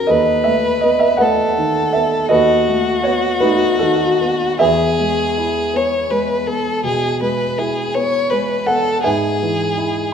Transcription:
0.00 0.12 F#3 soft
0.00 0.12 C#4 medium
0.00 0.12 F#4 medium
0.00 0.12 A#4 medium
0.07 2.27 D#2 medium
0.07 0.43 A4 medium
0.07 0.43 B4 medium
0.07 1.23 B4 medium
0.07 0.45 D#5 medium
0.44 1.06 A3 soft
0.44 0.82 E5 medium
0.81 1.43 B3 soft
0.81 1.01 D#5 medium
0.99 1.19 E5 medium
1.17 1.79 A3 medium
1.17 1.89 B4 medium
1.17 1.89 D#5 medium
1.17 1.92 F#5 medium
1.21 2.30 A4 medium
1.58 2.16 D#3 soft
1.93 2.53 B3 soft
1.93 2.30 E5 medium
2.29 4.58 D#2 medium
2.29 4.58 F#4 medium
2.29 3.01 A4 medium
2.29 3.01 B4 medium
2.29 3.04 D#5 medium
2.69 3.28 A3 soft
3.04 3.66 B3 medium
3.04 3.42 C#5 medium
3.40 4.06 A3 medium
3.40 3.78 D#4 medium
3.40 3.78 F#4 medium
3.40 3.80 B4 medium
3.79 4.46 D#3 soft
3.79 4.57 D#4 medium
3.79 4.58 F#4 medium
3.79 4.61 A4 medium
4.21 4.62 B3 soft
4.59 6.80 E2 medium
4.59 8.63 G#4 medium
4.59 5.77 G#4 medium
4.59 8.63 B4 medium
4.59 8.67 E5 medium
4.99 5.59 G#3 soft
5.38 5.96 E4 soft
5.74 6.33 B3 soft
5.74 6.12 C#5 medium
6.10 6.69 G#3 soft
6.10 6.49 B4 medium
6.47 7.07 B3 soft
6.47 6.84 A4 medium
6.84 7.43 B2 medium
6.84 7.20 G#4 medium
7.21 7.80 G#3 soft
7.21 7.60 B4 medium
7.58 8.17 E4 medium
7.58 7.96 G#4 medium
7.94 8.54 B3 soft
7.94 8.32 C#5 medium
8.30 8.90 G#3 soft
8.30 8.68 B4 medium
8.66 9.05 B3 soft
8.66 9.03 A4 medium
8.66 9.04 F#5 medium
9.03 10.13 G#2 medium
9.03 10.13 G#4 medium
9.03 10.10 B4 medium
9.03 10.10 E5 medium
9.03 10.12 G#5 medium
9.42 10.00 E3 soft
9.78 10.13 E4 soft

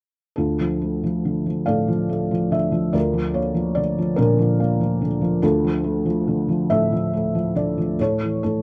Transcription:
0.36 2.91 D2 soft
0.36 1.64 D4 soft
0.36 1.64 F4 soft
0.36 1.65 A4 medium
0.61 1.02 F3 soft
0.81 2.08 A3 soft
1.04 1.45 F3 soft
1.25 2.50 D3 soft
1.46 1.87 F3 soft
1.66 2.90 A2 soft
1.66 2.90 A4 soft
1.66 2.90 D5 medium
1.66 2.54 F5 medium
1.88 2.30 F3 soft
2.09 2.91 A3 soft
2.31 2.70 F3 soft
2.51 2.92 D3 soft
2.51 2.95 E5 medium
2.72 2.93 F3 soft
2.93 5.39 D2 soft
2.93 4.14 F4 soft
2.93 4.14 A#4 soft
2.93 3.36 D5 medium
3.14 3.53 F3 soft
3.34 4.59 A#3 soft
3.34 3.77 C#5 medium
3.55 3.97 F3 soft
3.75 5.00 D3 soft
3.75 4.19 D5 medium
3.98 4.37 F3 soft
4.16 5.39 A#2 medium
4.16 5.39 D4 soft
4.16 5.39 F4 soft
4.16 5.07 A#4 medium
4.39 4.79 F3 soft
4.60 5.41 A#3 soft
4.81 5.20 F3 soft
5.02 5.42 D3 soft
5.22 5.42 F3 soft
5.42 7.95 D2 medium
5.42 6.66 D4 soft
5.42 6.66 F4 soft
5.42 6.69 A4 medium
5.64 6.04 F3 soft
5.84 7.12 A3 soft
6.06 6.47 F3 soft
6.28 7.54 D3 soft
6.49 6.91 F3 soft
6.70 7.95 A2 medium
6.70 7.95 A4 medium
6.70 7.52 E5 medium
6.92 7.33 F3 soft
7.13 7.97 A3 soft
7.35 7.76 F3 soft
7.55 7.98 D3 soft
7.55 7.97 D5 medium
7.78 7.99 F3 soft
7.99 8.43 A2 soft
7.99 8.62 E4 soft
7.99 8.42 A4 soft
7.99 8.41 C#5 medium
8.22 8.62 E3 soft
8.43 8.62 A2 soft
8.43 8.62 A4 medium

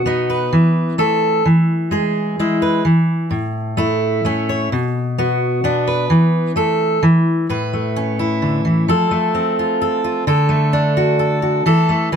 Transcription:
0.00 0.50 B2 medium
0.00 0.50 F#4 medium
0.06 0.98 B3 medium
0.06 0.50 D#4 medium
0.30 0.98 B4 medium
0.53 1.45 E3 medium
0.98 1.42 A3 medium
0.98 1.45 A4 medium
1.45 2.82 E3 medium
1.91 2.38 G#3 medium
1.91 2.82 G#4 medium
2.39 2.83 G#3 medium
2.39 2.83 E4 medium
2.62 2.82 B4 medium
2.85 3.29 E3 medium
3.31 4.70 A2 medium
3.77 4.23 A3 medium
3.77 4.70 E4 medium
4.25 4.68 A3 medium
4.25 4.68 C#4 medium
4.49 4.69 C#5 medium
4.72 6.07 B2 medium
5.18 5.63 B3 medium
5.18 6.08 F#4 medium
5.64 6.55 B3 medium
5.64 6.07 D4 medium
5.87 6.56 B4 medium
6.10 7.00 E3 medium
6.56 7.00 A3 medium
6.56 7.03 A4 medium
7.03 7.46 E3 medium
7.49 8.88 A2 medium
7.49 8.86 B4 medium
7.73 9.11 A3 medium
7.96 8.86 C#4 medium
8.19 8.88 E4 medium
8.42 8.64 D3 medium
8.65 8.88 E3 medium
8.88 10.24 F3 medium
8.88 9.81 A4 medium
9.11 10.24 A3 medium
9.35 10.27 C4 medium
9.59 10.03 F4 medium
9.82 10.26 A4 medium
10.04 10.24 F4 medium
10.27 11.65 D3 medium
10.27 11.18 A4 medium
10.49 11.62 A3 medium
10.73 11.63 D4 medium
10.97 11.41 F#4 medium
11.19 11.65 A4 medium
11.42 11.63 F#4 medium
11.66 12.12 E3 medium
11.66 12.12 A4 medium
11.89 12.09 A3 medium
12.12 12.16 E3 medium
12.12 12.16 B4 medium

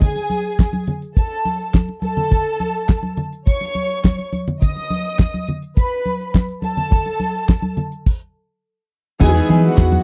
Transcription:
0.01 0.86 G#4 medium
0.01 0.86 G#5 medium
0.01 kick medium
0.01 closed hi-hat medium
0.01 muted conga soft
0.01 low conga medium
0.16 muted conga soft
0.30 closed hi-hat medium
0.30 high conga medium
0.45 closed hi-hat soft
0.59 kick loud
0.59 snare loud
0.59 clap medium
0.73 muted conga soft
0.73 high conga medium
0.87 closed hi-hat medium
0.87 low conga medium
1.02 closed hi-hat soft
1.16 1.73 A4 medium
1.16 1.73 A5 medium
1.16 kick loud
1.16 closed hi-hat medium
1.31 closed hi-hat soft
1.45 closed hi-hat medium
1.45 high conga medium
1.61 closed hi-hat soft
1.74 kick medium
1.74 snare medium
1.74 clap medium
1.74 high conga medium
1.89 muted conga soft
2.02 3.16 A4 loud
2.02 3.16 A5 loud
2.02 closed hi-hat medium
2.02 high conga medium
2.17 closed hi-hat soft
2.17 low conga medium
2.31 kick loud
2.31 closed hi-hat medium
2.31 muted conga soft
2.31 low conga medium
2.47 closed hi-hat soft
2.60 closed hi-hat medium
2.60 high conga medium
2.75 closed hi-hat soft
2.89 kick loud
2.89 snare loud
2.89 clap medium
3.03 high conga medium
3.17 closed hi-hat medium
3.17 low conga medium
3.32 closed hi-hat soft
3.46 4.32 C#5 medium
3.46 4.32 C#6 loud
3.46 kick loud
3.46 closed hi-hat medium
3.46 muted conga soft
3.61 snare soft
3.61 muted conga soft
3.75 closed hi-hat medium
3.75 high conga medium
3.91 closed hi-hat soft
4.04 kick medium
4.04 snare loud
4.04 clap medium
4.04 muted conga soft
4.04 high conga medium
4.19 muted conga soft
4.33 closed hi-hat medium
4.33 high conga medium
4.47 closed hi-hat soft
4.47 low conga medium
4.62 5.47 D#5 medium
4.62 5.47 D#6 medium
4.62 kick medium
4.62 closed hi-hat medium
4.62 muted conga soft
4.62 low conga medium
4.77 muted conga soft
4.90 closed hi-hat medium
4.90 high conga medium
5.05 closed hi-hat soft
5.19 kick loud
5.19 snare loud
5.19 clap medium
5.19 muted conga soft
5.33 closed hi-hat soft
5.33 high conga medium
5.47 closed hi-hat medium
5.47 low conga medium
5.62 closed hi-hat soft
5.77 6.33 B4 medium
5.77 6.33 B5 loud
5.77 kick loud
5.77 closed hi-hat medium
5.77 muted conga soft
5.91 closed hi-hat soft
6.05 closed hi-hat medium
6.05 high conga medium
6.21 closed hi-hat soft
6.34 kick medium
6.34 snare medium
6.34 clap medium
6.34 high conga medium
6.49 closed hi-hat soft
6.62 7.76 A4 loud
6.62 7.75 A5 loud
6.62 closed hi-hat medium
6.62 high conga medium
6.77 closed hi-hat soft
6.77 low conga medium
6.91 kick loud
6.91 closed hi-hat medium
6.91 low conga medium
7.06 closed hi-hat soft
7.06 muted conga soft
7.20 closed hi-hat medium
7.20 high conga medium
7.35 closed hi-hat soft
7.49 kick loud
7.49 snare loud
7.49 clap medium
7.62 closed hi-hat soft
7.62 muted conga soft
7.62 high conga medium
7.77 closed hi-hat medium
7.77 low conga medium
7.92 closed hi-hat soft
8.06 kick medium
8.06 crash medium
9.19 9.39 E2 medium
9.19 10.03 E3 medium
9.19 10.03 G#3 medium
9.19 10.03 B3 medium
9.19 10.03 D#4 medium
9.19 10.03 E4 medium
9.19 9.28 F#4 medium
9.19 9.44 G#4 loud
9.19 10.03 B4 medium
9.19 9.44 G#5 loud
9.19 muted clean electric guitar stroke medium
9.19 kick loud
9.19 crash loud
9.19 low conga medium
9.29 10.03 G#4 medium
9.35 9.48 B3 medium
9.35 9.48 D#4 medium
9.35 9.49 G#4 medium
9.35 closed hi-hat soft
9.35 muted conga soft
9.49 9.68 E3 medium
9.49 9.61 B3 medium
9.49 9.61 D#4 medium
9.49 9.62 G#4 medium
9.49 closed hi-hat medium
9.49 high conga medium
9.64 10.03 F#4 medium
9.64 10.03 F#5 medium
9.64 muted clean electric guitar stroke soft
9.64 closed hi-hat soft
9.78 9.96 E2 loud
9.78 muted clean electric guitar stroke soft
9.78 kick loud
9.78 snare loud
9.78 clap loud
9.78 muted conga soft
9.91 muted clean electric guitar stroke medium
9.91 closed hi-hat soft
9.91 muted conga soft
9.91 high conga medium

